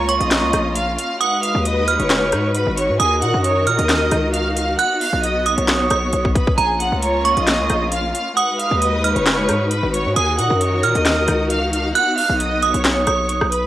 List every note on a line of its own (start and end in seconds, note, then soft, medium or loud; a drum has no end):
0.00 0.19 C#2 loud
0.00 1.19 A#3 medium
0.00 1.19 C#4 medium
0.00 1.19 F4 medium
0.00 0.19 C#5 medium
0.00 0.19 C#6 medium
0.09 0.72 C#6 medium
0.09 closed hi-hat medium
0.21 0.44 A#1 loud
0.21 0.73 D#5 medium
0.21 0.73 D#6 medium
0.21 closed hi-hat soft
0.31 snare loud
0.31 clap loud
0.31 closed hi-hat medium
0.43 0.53 C#2 loud
0.53 0.96 A#1 loud
0.53 cross-stick medium
0.53 closed hi-hat medium
0.76 0.95 F5 medium
0.76 0.95 F6 medium
0.76 closed hi-hat medium
0.98 1.17 F5 medium
0.98 1.17 F6 medium
0.98 closed hi-hat medium
1.21 2.98 G#3 medium
1.21 6.54 D#4 medium
1.21 6.54 F#4 medium
1.21 2.98 B4 medium
1.21 1.40 F#5 loud
1.21 1.84 D#6 loud
1.21 1.40 F#6 medium
1.21 closed hi-hat medium
1.43 1.62 F5 medium
1.43 1.62 F6 medium
1.43 closed hi-hat medium
1.55 1.98 D#2 loud
1.65 1.98 D#5 medium
1.65 1.98 D#6 medium
1.65 closed hi-hat medium
1.88 2.51 F6 medium
1.88 closed hi-hat medium
2.00 2.34 F#1 loud
2.00 2.52 C#5 medium
2.00 2.52 C#6 medium
2.00 closed hi-hat soft
2.10 snare loud
2.10 clap loud
2.10 closed hi-hat medium
2.32 2.65 G#2 loud
2.32 cross-stick medium
2.32 closed hi-hat medium
2.54 2.74 B4 medium
2.54 2.74 B5 medium
2.54 closed hi-hat medium
2.67 2.91 G#1 loud
2.77 2.96 C#5 medium
2.77 2.97 C#6 medium
2.77 closed hi-hat medium
2.89 2.99 G#2 loud
3.00 3.24 D#2 loud
3.00 4.77 D#3 medium
3.00 3.19 G#4 medium
3.00 4.77 A#4 medium
3.00 3.19 G#5 loud
3.00 3.63 D#6 loud
3.00 closed hi-hat medium
3.22 3.33 A#2 loud
3.22 3.41 F#5 medium
3.22 3.41 F#6 medium
3.22 closed hi-hat medium
3.34 3.68 F#2 loud
3.44 3.77 C#5 medium
3.44 3.77 C#6 medium
3.44 closed hi-hat medium
3.67 3.78 A#2 loud
3.67 4.30 F6 medium
3.67 closed hi-hat medium
3.79 4.10 D#2 loud
3.79 4.31 D#5 medium
3.79 4.31 D#6 medium
3.79 closed hi-hat soft
3.89 snare loud
3.89 clap loud
3.89 closed hi-hat medium
4.11 4.76 C#2 loud
4.11 cross-stick medium
4.11 closed hi-hat medium
4.34 4.53 F5 medium
4.34 4.53 F6 medium
4.34 closed hi-hat medium
4.56 4.75 F5 medium
4.56 4.76 F6 medium
4.56 closed hi-hat medium
4.79 6.56 B3 medium
4.79 4.98 F#5 loud
4.79 5.42 F#6 loud
4.79 4.98 F#6 medium
4.79 closed hi-hat medium
5.01 5.20 F5 medium
5.01 5.20 F6 medium
5.01 open hi-hat medium
5.13 5.56 B1 loud
5.23 5.56 D#5 medium
5.23 5.56 D#6 medium
5.23 closed hi-hat medium
5.46 5.88 D#6 medium
5.46 closed hi-hat medium
5.58 5.89 B1 loud
5.58 6.31 C#5 medium
5.58 6.32 C#6 medium
5.58 closed hi-hat medium
5.68 snare loud
5.68 clap loud
5.68 closed hi-hat medium
5.90 6.12 B1 loud
5.90 6.54 D#6 medium
5.90 cross-stick medium
5.90 closed hi-hat medium
6.13 6.35 B1 loud
6.13 closed hi-hat medium
6.25 kick medium
6.35 6.54 B4 medium
6.35 6.55 B5 medium
6.35 kick loud
6.35 closed hi-hat medium
6.47 kick loud
6.58 6.91 A#1 loud
6.58 8.35 A#3 medium
6.58 8.35 C#4 medium
6.58 8.35 F4 medium
6.58 6.77 G#4 medium
6.58 6.77 G#5 loud
6.58 7.21 A#5 loud
6.58 closed hi-hat medium
6.80 6.99 F#5 medium
6.80 6.99 F#6 medium
6.80 closed hi-hat medium
6.92 7.35 C#2 loud
7.02 7.35 C#5 medium
7.02 7.35 C#6 medium
7.02 closed hi-hat medium
7.25 7.88 C#6 medium
7.25 closed hi-hat medium
7.37 7.61 A#1 loud
7.37 7.89 D#5 medium
7.37 7.89 D#6 medium
7.37 closed hi-hat soft
7.47 snare loud
7.47 clap loud
7.47 closed hi-hat medium
7.59 7.69 C#2 loud
7.70 8.13 A#1 loud
7.70 cross-stick medium
7.70 closed hi-hat medium
7.92 8.11 F5 medium
7.92 8.11 F6 medium
7.92 closed hi-hat medium
8.14 8.33 F5 medium
8.14 8.34 F6 medium
8.14 closed hi-hat medium
8.37 10.14 G#3 medium
8.37 10.14 D#4 medium
8.37 13.67 F#4 medium
8.37 10.14 B4 medium
8.37 8.56 F#5 loud
8.37 9.00 D#6 loud
8.37 8.56 F#6 medium
8.37 closed hi-hat medium
8.59 8.78 F5 medium
8.59 8.79 F6 medium
8.59 closed hi-hat medium
8.71 9.14 D#2 loud
8.82 9.14 D#5 medium
8.82 9.14 D#6 medium
8.82 closed hi-hat medium
9.04 9.67 F6 medium
9.04 closed hi-hat medium
9.16 9.50 F#1 loud
9.16 9.68 C#5 medium
9.16 9.68 C#6 medium
9.16 closed hi-hat soft
9.26 snare loud
9.26 clap loud
9.26 closed hi-hat medium
9.49 9.81 G#2 loud
9.49 cross-stick medium
9.49 closed hi-hat medium
9.71 9.90 B4 medium
9.71 9.90 B5 medium
9.71 closed hi-hat medium
9.83 10.07 G#1 loud
9.94 10.12 C#5 medium
9.94 10.13 C#6 medium
9.94 closed hi-hat medium
10.06 10.16 G#2 loud
10.16 10.40 D#2 loud
10.16 11.93 D#3 medium
10.16 13.67 D#4 medium
10.16 10.35 G#4 medium
10.16 11.93 A#4 medium
10.16 10.35 G#5 loud
10.16 10.79 D#6 loud
10.16 closed hi-hat medium
10.39 10.50 A#2 loud
10.39 10.57 F#5 medium
10.39 10.58 F#6 medium
10.39 closed hi-hat medium
10.50 10.85 F#2 loud
10.61 10.93 C#5 medium
10.61 10.93 C#6 medium
10.61 closed hi-hat medium
10.83 10.95 A#2 loud
10.83 11.47 F6 medium
10.83 closed hi-hat medium
10.95 11.27 D#2 loud
10.95 11.47 D#5 medium
10.95 11.47 D#6 medium
10.95 closed hi-hat soft
11.05 snare loud
11.05 clap loud
11.05 closed hi-hat medium
11.28 11.93 C#2 loud
11.28 cross-stick medium
11.28 closed hi-hat medium
11.50 11.69 F5 medium
11.50 11.70 F6 medium
11.50 closed hi-hat medium
11.73 11.92 F5 medium
11.73 11.92 F6 medium
11.73 closed hi-hat medium
11.95 13.67 B3 medium
11.95 12.14 F#5 loud
11.95 12.58 F#6 loud
11.95 12.14 F#6 medium
11.95 closed hi-hat medium
12.17 12.36 F5 medium
12.17 12.37 F6 medium
12.17 open hi-hat medium
12.29 12.72 B1 loud
12.40 12.72 D#5 medium
12.40 12.72 D#6 medium
12.40 closed hi-hat medium
12.62 13.05 D#6 medium
12.62 closed hi-hat medium
12.74 13.06 B1 loud
12.74 13.48 C#5 medium
12.74 13.48 C#6 medium
12.74 closed hi-hat medium
12.84 snare loud
12.84 clap loud
12.84 closed hi-hat medium
13.07 13.40 B1 loud
13.07 13.67 D#6 medium
13.07 cross-stick medium
13.07 closed hi-hat medium
13.29 closed hi-hat medium
13.41 13.65 B1 loud
13.41 cross-stick medium
13.52 13.67 B4 medium
13.52 13.67 B5 medium
13.52 closed hi-hat medium